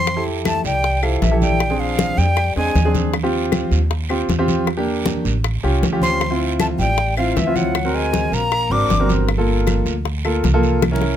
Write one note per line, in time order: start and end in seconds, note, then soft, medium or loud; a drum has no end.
0.00 0.59 F2 medium
0.00 0.24 C4 medium
0.00 0.24 C6 loud
0.07 high bongo medium
0.07 high conga soft
0.07 long guiro medium
0.07 claves medium
0.16 0.70 E4 medium
0.16 0.70 G4 medium
0.16 0.70 A4 medium
0.27 high conga soft
0.45 0.64 A3 medium
0.45 0.64 A5 medium
0.45 high bongo medium
0.45 high conga medium
0.45 short guiro medium
0.45 claves medium
0.64 1.18 C2 medium
0.64 1.05 G3 medium
0.64 1.05 G5 medium
0.64 high bongo soft
0.64 high conga soft
0.64 short guiro medium
0.84 high bongo medium
0.84 high conga soft
0.84 long guiro medium
1.03 1.25 F3 medium
1.03 1.23 E4 medium
1.03 1.23 G4 medium
1.03 1.23 A4 medium
1.03 1.24 F5 medium
1.03 high bongo soft
1.03 high conga soft
1.03 claves medium
1.22 2.12 A#1 medium
1.22 1.42 E3 medium
1.22 1.40 E5 medium
1.22 high bongo soft
1.22 low bongo medium
1.22 high conga medium
1.22 short guiro medium
1.31 1.58 E4 medium
1.31 1.58 G4 medium
1.31 1.58 A4 medium
1.41 1.81 G3 medium
1.41 1.81 G5 medium
1.41 high bongo soft
1.41 high conga medium
1.41 short guiro medium
1.60 high bongo medium
1.60 long guiro medium
1.60 claves medium
1.70 2.24 C4 medium
1.70 2.24 D4 medium
1.70 2.24 G#4 medium
1.80 2.20 F3 medium
1.80 2.19 F5 medium
1.80 high conga soft
1.99 high bongo medium
1.99 high conga medium
1.99 short guiro medium
2.18 2.53 F2 medium
2.18 2.56 G3 medium
2.18 2.56 G5 medium
2.18 high bongo soft
2.18 high conga soft
2.18 short guiro medium
2.37 high bongo medium
2.37 high conga soft
2.37 long guiro medium
2.37 claves medium
2.56 2.74 E2 medium
2.56 2.92 G#3 medium
2.56 2.77 C4 medium
2.56 2.77 D4 medium
2.56 2.77 G#4 medium
2.56 2.92 G#5 medium
2.56 high bongo soft
2.56 high conga soft
2.75 3.65 D#2 medium
2.75 high bongo soft
2.75 low bongo medium
2.75 high conga medium
2.75 short guiro medium
2.85 3.12 C4 medium
2.85 3.12 D4 medium
2.85 3.12 G#4 medium
2.95 high bongo soft
2.95 high conga medium
2.95 short guiro medium
3.14 high bongo medium
3.14 high conga soft
3.14 long guiro medium
3.14 claves medium
3.23 3.77 C4 medium
3.23 3.77 F4 medium
3.23 3.77 G4 loud
3.33 high conga soft
3.52 high bongo medium
3.52 high conga medium
3.52 short guiro medium
3.52 claves medium
3.71 4.25 D#2 medium
3.71 high bongo soft
3.71 high conga soft
3.71 short guiro medium
3.91 high bongo medium
3.91 high conga soft
3.91 long guiro medium
4.09 4.30 C4 medium
4.09 4.30 F4 medium
4.09 4.30 G4 medium
4.09 high bongo soft
4.09 high conga soft
4.09 claves medium
4.28 5.19 E2 medium
4.28 high bongo soft
4.28 low bongo medium
4.28 high conga medium
4.28 short guiro medium
4.39 4.66 C4 loud
4.39 4.66 F4 medium
4.39 4.66 G4 loud
4.48 high bongo soft
4.48 high conga medium
4.48 short guiro medium
4.67 high bongo medium
4.67 high conga soft
4.67 long guiro medium
4.67 claves medium
4.77 5.31 A#3 medium
4.77 5.31 D4 medium
4.77 5.31 G4 loud
4.87 high conga soft
5.06 high bongo medium
5.06 high conga medium
5.06 short guiro medium
5.25 5.61 A1 medium
5.25 high bongo soft
5.25 high conga soft
5.25 short guiro medium
5.44 high bongo medium
5.44 high conga soft
5.44 long guiro medium
5.44 claves medium
5.63 5.81 C2 medium
5.63 5.84 C#4 medium
5.63 5.84 F4 medium
5.63 5.84 G4 medium
5.63 high bongo soft
5.63 high conga soft
5.83 6.73 D2 medium
5.83 high bongo soft
5.83 low bongo medium
5.83 high conga medium
5.83 short guiro medium
5.92 6.19 C#4 medium
5.92 6.19 F4 medium
5.92 6.19 G4 loud
6.02 6.38 C4 medium
6.02 6.38 C6 medium
6.02 high bongo soft
6.02 high conga medium
6.02 short guiro medium
6.21 high bongo medium
6.21 high conga soft
6.21 long guiro medium
6.21 claves medium
6.30 6.84 C4 medium
6.30 6.84 E4 medium
6.30 6.84 F4 medium
6.41 high conga soft
6.60 6.69 A3 medium
6.60 6.66 A5 medium
6.60 high bongo medium
6.60 high conga medium
6.60 short guiro medium
6.60 claves medium
6.79 7.32 A1 medium
6.79 7.15 G3 medium
6.79 7.15 G5 loud
6.79 high bongo soft
6.79 high conga soft
6.79 short guiro medium
6.98 high bongo medium
6.98 high conga soft
6.98 long guiro medium
7.17 7.38 F3 medium
7.17 7.38 C4 medium
7.17 7.38 E4 medium
7.17 7.38 F4 medium
7.17 7.38 F5 medium
7.17 high bongo soft
7.17 high conga soft
7.17 claves medium
7.36 8.27 D2 medium
7.36 7.58 E3 medium
7.36 7.57 E5 medium
7.36 high bongo soft
7.36 low bongo medium
7.36 high conga medium
7.36 short guiro medium
7.47 7.73 C4 medium
7.47 7.73 E4 medium
7.47 7.73 F4 medium
7.56 7.96 F#3 medium
7.56 7.97 F#5 medium
7.56 high bongo soft
7.56 high conga medium
7.56 short guiro medium
7.75 high bongo medium
7.75 high conga soft
7.75 long guiro medium
7.75 claves medium
7.85 8.38 C4 medium
7.85 8.39 F#4 medium
7.85 8.39 A#4 medium
7.95 8.35 G#3 medium
7.95 8.35 G#5 medium
7.95 high conga soft
8.13 high bongo medium
8.13 high conga medium
8.13 short guiro medium
8.32 8.68 A#1 medium
8.32 8.74 A#3 medium
8.32 8.73 A#5 loud
8.32 high bongo soft
8.32 high conga soft
8.32 short guiro medium
8.52 high bongo medium
8.52 high conga soft
8.52 long guiro medium
8.52 claves medium
8.70 8.88 G#1 medium
8.70 8.91 C4 medium
8.70 9.10 D4 medium
8.70 8.91 F#4 medium
8.70 8.91 A#4 medium
8.70 9.10 D6 loud
8.70 high bongo soft
8.70 high conga soft
8.89 9.80 G1 medium
8.89 high bongo soft
8.89 low bongo medium
8.89 high conga medium
8.89 short guiro medium
9.00 9.27 C4 medium
9.00 9.27 F#4 medium
9.00 9.27 A#4 medium
9.09 high bongo soft
9.09 high conga medium
9.09 short guiro medium
9.29 high bongo medium
9.29 high conga soft
9.29 long guiro medium
9.29 claves medium
9.38 9.92 A#3 medium
9.38 9.92 F4 medium
9.38 9.92 A4 medium
9.49 high conga soft
9.67 high bongo medium
9.67 high conga medium
9.67 short guiro medium
9.67 claves medium
9.86 10.40 D2 medium
9.86 high bongo soft
9.86 high conga soft
9.86 short guiro medium
10.05 high bongo medium
10.05 high conga soft
10.05 long guiro medium
10.25 10.45 A#3 medium
10.25 10.45 F4 medium
10.25 10.45 A4 medium
10.25 high bongo soft
10.25 high conga soft
10.25 claves medium
10.43 11.17 C2 medium
10.43 high bongo soft
10.43 low bongo medium
10.43 high conga medium
10.43 short guiro medium
10.54 10.81 A#3 loud
10.54 10.81 F4 medium
10.54 10.81 A4 loud
10.63 high bongo soft
10.63 short guiro medium
10.82 high bongo loud
10.82 high conga medium
10.82 long guiro medium
10.82 claves medium
10.91 11.17 C#4 medium
10.91 11.17 E4 medium
10.91 11.17 A#4 medium
10.96 high conga medium
11.01 high bongo medium